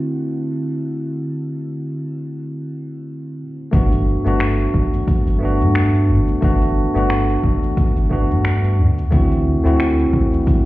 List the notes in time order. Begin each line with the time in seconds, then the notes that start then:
Already playing: D3 A3 C4 E4 F#4
3.71 G1 A3 B3 D4 F#4, kick, open hi-hat, cabasa
3.92 open hi-hat, cabasa
4.25 G1 A3 B3 D4 F#4, cabasa
4.40 finger snap, open hi-hat, cabasa
4.60 open hi-hat, cabasa
4.74 G1, kick
4.93 open hi-hat, cabasa
5.08 kick, open hi-hat, cabasa
5.27 G1, open hi-hat, cabasa
5.39 A3 B3
5.43 D4 F#4
5.61 G2, cabasa
5.75 finger snap, open hi-hat, cabasa
5.94 open hi-hat, cabasa
6.09 G1
6.28 open hi-hat, cabasa
6.41 G1 A3 B3 D4 F#4, kick, open hi-hat, cabasa
6.62 open hi-hat, cabasa
6.94 G1 A3 B3 D4 F#4, cabasa
7.10 finger snap, open hi-hat, cabasa
7.29 open hi-hat, cabasa
7.43 G1, kick
7.63 open hi-hat, cabasa
7.77 kick, open hi-hat, cabasa
7.97 G1, open hi-hat, cabasa
8.10 A3 B3 D4 F#4, kick
8.31 G2, cabasa
8.45 finger snap, open hi-hat, cabasa
8.64 open hi-hat, cabasa
8.79 D2
8.98 open hi-hat, cabasa
9.10 D2 A3 C4 E4 F#4, kick, open hi-hat, cabasa
9.32 open hi-hat, cabasa
9.64 D2 A3 C4 E4 F#4, cabasa
9.80 finger snap, open hi-hat, cabasa
9.99 open hi-hat, cabasa
10.13 D2, kick
10.33 open hi-hat, cabasa
10.47 kick, open hi-hat, cabasa